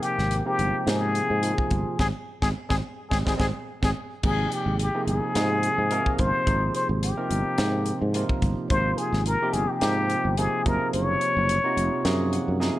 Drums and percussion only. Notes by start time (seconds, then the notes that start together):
0.03 closed hi-hat
0.19 snare
0.31 closed hi-hat
0.59 closed hi-hat
0.87 snare, closed hi-hat
1.15 closed hi-hat
1.43 closed hi-hat
1.58 kick
1.71 kick, closed hi-hat
1.99 kick, snare
2.42 kick, snare
2.70 kick, snare
3.11 kick, snare
3.27 kick, snare
3.40 kick, snare
3.83 kick, snare
4.23 kick, crash
4.52 closed hi-hat
4.79 closed hi-hat
5.08 closed hi-hat
5.35 snare, closed hi-hat
5.63 closed hi-hat
5.91 closed hi-hat
6.06 kick
6.19 kick, closed hi-hat
6.47 kick, closed hi-hat
6.75 closed hi-hat
7.03 closed hi-hat
7.31 closed hi-hat
7.58 snare, closed hi-hat
7.86 closed hi-hat
8.14 closed hi-hat
8.29 kick
8.42 kick, closed hi-hat
8.70 kick, closed hi-hat
8.98 closed hi-hat
9.13 snare
9.26 closed hi-hat
9.53 closed hi-hat
9.81 snare, closed hi-hat
10.10 closed hi-hat
10.37 closed hi-hat
10.66 kick, closed hi-hat
10.93 closed hi-hat
11.21 closed hi-hat
11.49 closed hi-hat
11.78 closed hi-hat
12.05 snare, closed hi-hat
12.33 closed hi-hat
12.61 snare